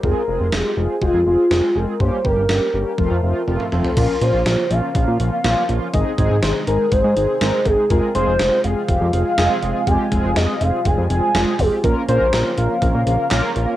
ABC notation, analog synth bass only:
X:1
M:4/4
L:1/16
Q:1/4=122
K:Fm
V:1 name="Analog synth bass" clef=bass
F,,, z F,,, F,,, F,,, z F,,, z F,,, F,, F,,, z F,,, z F,,, z | G,,, z G,,, G,,, G,,, z G,,, z F,,, F,, F,,, z F,,, z F,,, z | [K:Bbdor] B,,, z B,,, B,,, B,,, z B,,, z B,,, B,, B,,, z B,,, z B,,, z | A,,, z A,,, A,,, A,,, z A,,, z A,,, A,, A,,, z A,,, z A,,, z |
F,,, z F,,, F,,, F,,, z F,,, z F,,, F,, F,,, z F,,, z F,,, z | F,,, z F,,, F,,, F,,, z F,,, z F,,, F,, F,,, z F,,, z F,,, z | B,,, z B,,, B,,, B,,, z B,,, z B,,, B,, B,,, z B,,, z B,,, z |]